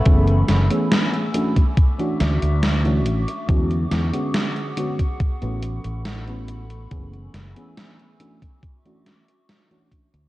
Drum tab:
HH |xxxxxxxxxxxxxxxx|xxxxxxxxxxxxxxxx|xxxxxxxxxxxxxxxx|
SD |--o-o-----o-o---|--o-o-------o---|--o-o-----o-o---|
BD |o------oo-------|o------oo-------|o------oo-----o-|